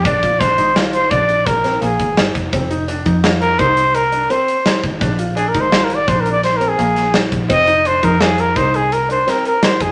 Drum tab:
HH |xxxxxxxxxxxxxx|xxxxxxxxxxxxxx|xxxxxxxxxxxxxx|xxxxxxxxxxxxxx|
SD |--o-o----o--o-|----o-------o-|----o---o--oo-|----o-----o-o-|
BD |ooo---o-o--o-o|o--o--o------o|o--o--o------o|o--o--o------o|